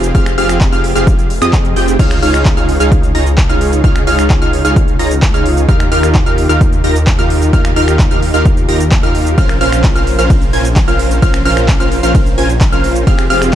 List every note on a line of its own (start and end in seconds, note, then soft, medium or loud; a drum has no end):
0.00 0.12 F1 loud
0.00 0.12 C4 medium
0.00 0.12 F4 medium
0.00 0.12 G4 medium
0.00 0.12 G#4 medium
0.00 0.12 F5 loud
0.00 0.12 F6 loud
0.00 closed hi-hat soft
0.00 cabasa medium
0.15 0.36 F1 loud
0.15 0.34 C4 medium
0.15 0.34 F4 medium
0.15 0.34 G4 medium
0.15 0.34 G#4 medium
0.15 0.34 F5 loud
0.15 0.34 F6 loud
0.15 kick loud
0.15 closed hi-hat loud
0.15 cabasa medium
0.26 finger snap medium
0.26 closed hi-hat soft
0.26 cabasa soft
0.38 0.70 F1 loud
0.38 0.70 C4 loud
0.38 0.70 F4 medium
0.38 0.70 G4 medium
0.38 0.70 G#4 medium
0.38 0.70 F5 loud
0.38 0.70 F6 loud
0.38 open hi-hat loud
0.49 finger snap medium
0.49 closed hi-hat soft
0.49 cabasa medium
0.61 kick loud
0.61 clap loud
0.61 closed hi-hat loud
0.61 cabasa medium
0.72 0.93 F1 loud
0.72 0.93 C4 medium
0.72 0.93 F4 medium
0.72 0.93 G4 medium
0.72 0.93 G#4 medium
0.72 0.93 F5 medium
0.72 0.93 F6 medium
0.72 closed hi-hat soft
0.72 cabasa soft
0.84 open hi-hat loud
0.95 1.39 F1 loud
0.95 1.27 C4 medium
0.95 1.27 F4 medium
0.95 1.27 G4 medium
0.95 1.27 G#4 medium
0.95 1.27 F5 medium
0.95 1.27 F6 medium
0.95 cabasa medium
1.07 kick loud
1.07 closed hi-hat loud
1.07 cabasa medium
1.19 closed hi-hat soft
1.19 cabasa soft
1.30 open hi-hat loud
1.42 1.74 F2 loud
1.42 1.74 C4 medium
1.42 1.74 F4 medium
1.42 1.74 G4 medium
1.42 1.74 G#4 medium
1.42 1.74 D#5 loud
1.42 1.74 D#6 loud
1.42 finger snap medium
1.42 cabasa medium
1.53 kick loud
1.53 clap loud
1.53 closed hi-hat loud
1.53 cabasa medium
1.65 closed hi-hat soft
1.65 cabasa soft
1.76 1.97 F1 loud
1.76 1.97 C4 medium
1.76 1.97 F4 medium
1.76 1.97 G4 medium
1.76 1.97 G#4 medium
1.76 1.97 G5 medium
1.76 1.97 G6 loud
1.76 open hi-hat loud
1.88 closed hi-hat soft
1.88 cabasa medium
1.99 2.20 C#2 loud
1.99 2.18 D#4 loud
1.99 2.18 F4 medium
1.99 2.18 G#4 medium
1.99 2.18 C#5 medium
1.99 2.18 F5 loud
1.99 2.18 F6 loud
1.99 kick loud
1.99 closed hi-hat loud
1.99 crash medium
1.99 cabasa medium
2.11 finger snap medium
2.11 closed hi-hat soft
2.11 cabasa soft
2.22 2.55 C#2 loud
2.22 2.54 D#4 loud
2.22 2.54 F4 medium
2.22 2.54 G#4 medium
2.22 2.54 C#5 medium
2.22 2.54 F5 loud
2.22 2.54 F6 loud
2.22 open hi-hat loud
2.34 finger snap medium
2.34 closed hi-hat soft
2.34 cabasa medium
2.45 kick loud
2.45 clap loud
2.45 closed hi-hat loud
2.45 cabasa medium
2.57 2.78 C#2 loud
2.57 2.77 D#4 medium
2.57 2.77 F4 medium
2.57 2.77 G#4 medium
2.57 2.77 C#5 medium
2.57 2.77 F5 medium
2.57 2.77 F6 medium
2.57 closed hi-hat soft
2.57 cabasa soft
2.69 open hi-hat loud
2.80 3.12 C#2 loud
2.80 3.12 D#4 medium
2.80 3.12 F4 medium
2.80 3.12 G#4 medium
2.80 3.12 C#5 medium
2.80 3.12 F5 medium
2.80 3.12 F6 medium
2.80 closed hi-hat soft
2.80 cabasa medium
2.92 kick loud
2.92 closed hi-hat loud
2.92 cabasa medium
3.03 closed hi-hat soft
3.03 cabasa soft
3.15 3.47 C#2 loud
3.15 3.27 D#4 medium
3.15 3.27 F4 medium
3.15 3.27 G#4 medium
3.15 3.27 C#5 medium
3.15 3.27 A#5 medium
3.15 3.27 A#6 medium
3.15 open hi-hat loud
3.26 closed hi-hat soft
3.26 cabasa medium
3.38 kick loud
3.38 clap loud
3.38 closed hi-hat loud
3.38 cabasa medium
3.49 3.82 C#2 loud
3.49 3.81 D#4 medium
3.49 3.81 F4 medium
3.49 3.81 G#4 medium
3.49 3.81 C#5 medium
3.49 3.81 F5 loud
3.49 3.81 F6 loud
3.49 closed hi-hat soft
3.49 cabasa soft
3.61 open hi-hat loud
3.73 closed hi-hat soft
3.73 cabasa medium
3.84 4.05 C#2 loud
3.84 4.03 D#4 medium
3.84 4.03 F4 medium
3.84 4.03 G#4 medium
3.84 4.03 C#5 medium
3.84 4.03 F5 loud
3.84 4.03 F6 loud
3.84 kick loud
3.84 closed hi-hat medium
3.84 cabasa medium
3.96 finger snap medium
3.96 closed hi-hat soft
3.96 cabasa soft
4.07 4.39 C#2 loud
4.07 4.39 D#4 loud
4.07 4.39 F4 medium
4.07 4.39 G#4 medium
4.07 4.39 C#5 medium
4.07 4.39 F5 loud
4.07 4.39 F6 loud
4.07 open hi-hat loud
4.19 finger snap medium
4.19 closed hi-hat soft
4.19 cabasa medium
4.30 kick loud
4.30 clap loud
4.30 closed hi-hat medium
4.30 cabasa medium
4.42 4.62 C#2 loud
4.42 4.62 D#4 medium
4.42 4.62 F4 medium
4.42 4.62 G#4 medium
4.42 4.62 C#5 medium
4.42 4.62 F5 medium
4.42 4.62 F6 medium
4.42 closed hi-hat soft
4.42 cabasa soft
4.53 open hi-hat loud
4.65 4.97 C#2 loud
4.65 4.97 D#4 medium
4.65 4.97 F4 medium
4.65 4.97 G#4 medium
4.65 4.97 C#5 medium
4.65 4.97 F5 medium
4.65 4.97 F6 medium
4.65 closed hi-hat soft
4.65 cabasa medium
4.76 kick loud
4.76 closed hi-hat loud
4.76 cabasa medium
4.88 closed hi-hat soft
4.88 cabasa soft
4.99 5.32 C#2 medium
4.99 5.11 D#4 medium
4.99 5.11 F4 medium
4.99 5.11 G#4 medium
4.99 5.11 C#5 medium
4.99 5.11 A#5 medium
4.99 5.11 A#6 medium
4.99 open hi-hat loud
5.11 closed hi-hat soft
5.11 cabasa medium
5.22 kick loud
5.22 clap loud
5.22 closed hi-hat loud
5.22 cabasa medium
5.34 5.66 C#2 loud
5.34 5.66 D#4 medium
5.34 5.66 F4 medium
5.34 5.66 G#4 medium
5.34 5.66 C#5 medium
5.34 5.66 F5 medium
5.34 5.66 F6 medium
5.34 closed hi-hat soft
5.34 cabasa soft
5.46 open hi-hat loud
5.57 closed hi-hat soft
5.57 cabasa medium
5.69 5.89 D#2 loud
5.69 5.88 D#4 loud
5.69 5.88 F4 medium
5.69 5.88 G4 medium
5.69 5.88 A#4 medium
5.69 5.88 F5 loud
5.69 5.88 F6 loud
5.69 kick loud
5.69 closed hi-hat medium
5.69 cabasa medium
5.80 finger snap medium
5.80 closed hi-hat soft
5.80 cabasa soft
5.92 6.24 D#2 medium
5.92 6.24 D#4 loud
5.92 6.23 F4 medium
5.92 6.23 G4 medium
5.92 6.23 A#4 medium
5.92 6.23 F5 loud
5.92 6.24 F6 loud
5.92 open hi-hat loud
6.03 finger snap medium
6.03 closed hi-hat soft
6.03 cabasa medium
6.15 kick loud
6.15 clap loud
6.15 closed hi-hat medium
6.15 cabasa medium
6.26 6.47 D#2 loud
6.26 6.47 D#4 medium
6.26 6.47 F4 medium
6.26 6.47 G4 medium
6.26 6.47 A#4 medium
6.26 6.47 F5 medium
6.26 6.47 F6 medium
6.26 closed hi-hat soft
6.26 cabasa soft
6.38 open hi-hat loud
6.49 6.82 D#2 loud
6.49 6.81 D#4 medium
6.49 6.81 F4 medium
6.49 6.81 G4 medium
6.49 6.81 A#4 medium
6.49 6.81 F5 medium
6.49 6.81 F6 medium
6.49 closed hi-hat soft
6.49 cabasa medium
6.61 kick loud
6.61 closed hi-hat medium
6.61 cabasa medium
6.73 closed hi-hat soft
6.73 cabasa soft
6.84 7.16 D#2 medium
6.84 6.96 D#4 medium
6.84 6.96 F4 medium
6.84 6.96 G4 medium
6.84 6.96 A#4 medium
6.84 6.96 A#5 medium
6.84 6.96 A#6 medium
6.84 open hi-hat loud
6.96 closed hi-hat soft
6.96 cabasa medium
7.07 kick loud
7.07 clap loud
7.07 closed hi-hat medium
7.07 cabasa medium
7.19 7.51 D#2 loud
7.19 7.50 D#4 medium
7.19 7.50 F4 medium
7.19 7.50 G4 medium
7.19 7.50 A#4 medium
7.19 7.50 F5 loud
7.19 7.50 F6 loud
7.19 closed hi-hat soft
7.19 cabasa soft
7.30 open hi-hat loud
7.42 closed hi-hat soft
7.42 cabasa medium
7.53 7.74 D#2 loud
7.53 7.72 D#4 loud
7.53 7.72 F4 medium
7.53 7.72 G4 medium
7.53 7.72 A#4 medium
7.53 7.72 F5 loud
7.53 7.72 F6 loud
7.53 kick loud
7.53 closed hi-hat medium
7.53 cabasa medium
7.65 finger snap medium
7.65 closed hi-hat soft
7.65 cabasa soft
7.76 8.09 D#2 loud
7.76 8.08 D#4 loud
7.76 8.08 F4 medium
7.76 8.08 G4 medium
7.76 8.08 A#4 medium
7.76 8.08 F5 loud
7.76 8.08 F6 loud
7.76 open hi-hat loud
7.88 finger snap medium
7.88 closed hi-hat soft
7.88 cabasa medium
7.99 kick loud
7.99 clap loud
7.99 closed hi-hat medium
7.99 cabasa medium
8.11 8.32 D#2 loud
8.11 8.31 D#4 medium
8.11 8.31 F4 medium
8.11 8.31 G4 medium
8.11 8.31 A#4 medium
8.11 8.31 F5 medium
8.11 8.31 F6 medium
8.11 closed hi-hat soft
8.11 cabasa soft
8.22 open hi-hat loud
8.34 8.66 D#2 loud
8.34 8.66 D#4 medium
8.34 8.66 F4 medium
8.34 8.66 G4 medium
8.34 8.66 A#4 medium
8.34 8.66 F5 medium
8.34 8.66 F6 medium
8.34 closed hi-hat soft
8.34 cabasa medium
8.46 kick loud
8.46 closed hi-hat medium
8.46 cabasa medium
8.57 closed hi-hat soft
8.57 cabasa soft
8.69 9.01 D#2 medium
8.69 8.80 D#4 medium
8.69 8.80 F4 medium
8.69 8.80 G4 medium
8.69 8.80 A#4 medium
8.69 8.80 A#5 medium
8.69 8.80 A#6 medium
8.69 open hi-hat loud
8.80 closed hi-hat soft
8.80 cabasa medium
8.91 kick loud
8.91 clap loud
8.91 closed hi-hat medium
8.91 cabasa medium
9.03 9.35 D#2 loud
9.03 9.35 D#4 medium
9.03 9.35 F4 medium
9.03 9.35 G4 medium
9.03 9.35 A#4 medium
9.03 9.35 F5 loud
9.03 9.35 F6 loud
9.03 closed hi-hat soft
9.03 cabasa soft
9.15 open hi-hat loud
9.27 cabasa medium
9.38 9.59 A#1 loud
9.38 9.57 C#4 loud
9.38 9.57 F4 medium
9.38 9.57 A#4 medium
9.38 9.57 C5 medium
9.38 9.57 F5 loud
9.38 9.57 F6 loud
9.38 kick loud
9.38 closed hi-hat medium
9.38 ride medium
9.38 cabasa medium
9.49 finger snap medium
9.49 closed hi-hat soft
9.49 cabasa soft
9.61 9.93 A#1 medium
9.61 9.93 C#4 loud
9.61 9.93 F4 medium
9.61 9.93 A#4 medium
9.61 9.93 C5 medium
9.61 9.93 F5 loud
9.61 9.93 F6 loud
9.61 open hi-hat loud
9.72 finger snap medium
9.72 closed hi-hat soft
9.72 cabasa medium
9.84 kick loud
9.84 clap loud
9.84 closed hi-hat medium
9.84 ride medium
9.84 cabasa medium
9.95 10.16 A#1 loud
9.95 10.16 C#4 medium
9.95 10.16 F4 medium
9.95 10.16 A#4 medium
9.95 10.16 C5 medium
9.95 10.16 F5 medium
9.95 10.16 F6 medium
9.95 closed hi-hat soft
9.95 cabasa soft
10.07 open hi-hat loud
10.19 10.51 A#1 loud
10.19 10.50 C#4 medium
10.19 10.50 F4 medium
10.19 10.50 A#4 medium
10.19 10.50 C5 medium
10.19 10.50 F5 medium
10.19 10.50 F6 medium
10.19 closed hi-hat soft
10.19 cabasa medium
10.30 kick loud
10.30 closed hi-hat medium
10.30 ride medium
10.30 cabasa medium
10.42 closed hi-hat soft
10.42 cabasa soft
10.53 10.85 A#1 loud
10.53 10.65 C#4 medium
10.53 10.65 F4 medium
10.53 10.65 A#4 medium
10.53 10.65 C5 medium
10.53 10.65 G#5 medium
10.53 10.65 G#6 medium
10.53 open hi-hat loud
10.65 closed hi-hat soft
10.65 cabasa medium
10.76 kick loud
10.76 clap loud
10.76 closed hi-hat medium
10.76 ride medium
10.76 cabasa medium
10.88 11.20 A#1 loud
10.88 11.20 C#4 medium
10.88 11.20 F4 medium
10.88 11.20 A#4 medium
10.88 11.20 C5 medium
10.88 11.20 F5 medium
10.88 11.20 F6 medium
10.88 closed hi-hat soft
10.88 cabasa soft
10.99 open hi-hat loud
11.11 closed hi-hat soft
11.11 cabasa medium
11.22 11.43 A#1 loud
11.22 11.41 C#4 medium
11.22 11.41 F4 medium
11.22 11.41 A#4 medium
11.22 11.41 C5 medium
11.22 11.41 F5 loud
11.22 11.41 F6 loud
11.22 kick loud
11.22 closed hi-hat loud
11.22 ride medium
11.22 cabasa medium
11.34 finger snap medium
11.34 closed hi-hat soft
11.34 cabasa soft
11.45 11.78 A#1 loud
11.45 11.77 C#4 loud
11.45 11.77 F4 medium
11.45 11.77 A#4 medium
11.45 11.77 C5 medium
11.45 11.77 F5 loud
11.45 11.77 F6 loud
11.45 open hi-hat loud
11.57 finger snap medium
11.57 closed hi-hat soft
11.57 cabasa medium
11.68 kick loud
11.68 clap loud
11.68 closed hi-hat medium
11.68 ride medium
11.68 cabasa medium
11.80 12.01 A#1 loud
11.80 12.00 C#4 medium
11.80 12.00 F4 medium
11.80 12.00 A#4 medium
11.80 12.00 C5 medium
11.80 12.00 F5 medium
11.80 12.00 F6 medium
11.80 closed hi-hat soft
11.80 cabasa soft
11.92 open hi-hat loud
12.03 12.35 A#1 loud
12.03 12.35 C#4 medium
12.03 12.35 F4 medium
12.03 12.35 A#4 medium
12.03 12.35 C5 medium
12.03 12.35 F5 medium
12.03 12.35 F6 medium
12.03 closed hi-hat soft
12.03 cabasa medium
12.15 kick loud
12.15 closed hi-hat loud
12.15 ride medium
12.15 cabasa medium
12.26 closed hi-hat soft
12.26 cabasa soft
12.38 12.70 A#1 loud
12.38 12.50 C#4 medium
12.38 12.50 F4 medium
12.38 12.50 A#4 medium
12.38 12.50 C5 medium
12.38 12.50 G#5 medium
12.38 12.50 G#6 medium
12.38 open hi-hat loud
12.49 closed hi-hat soft
12.49 cabasa medium
12.61 kick loud
12.61 clap loud
12.61 closed hi-hat medium
12.61 ride medium
12.61 cabasa medium
12.72 13.05 A#1 loud
12.72 13.04 C#4 medium
12.72 13.04 F4 medium
12.72 13.04 A#4 medium
12.72 13.04 C5 medium
12.72 13.04 F5 loud
12.72 13.04 F6 medium
12.72 closed hi-hat soft
12.72 cabasa soft
12.84 open hi-hat loud
12.96 closed hi-hat soft
12.96 cabasa medium
13.07 13.28 F1 loud
13.07 13.26 C4 loud
13.07 13.26 F4 medium
13.07 13.26 G4 medium
13.07 13.26 G#4 medium
13.07 13.26 F5 loud
13.07 13.26 F6 loud
13.07 kick loud
13.07 closed hi-hat loud
13.07 ride medium
13.07 cabasa medium
13.19 finger snap medium
13.19 closed hi-hat soft
13.19 cabasa soft
13.30 13.55 F1 loud
13.30 13.55 C4 loud
13.30 13.55 F4 medium
13.30 13.55 G4 medium
13.30 13.55 G#4 medium
13.30 13.55 F5 loud
13.30 13.55 F6 loud
13.30 open hi-hat loud
13.42 finger snap medium
13.42 cabasa medium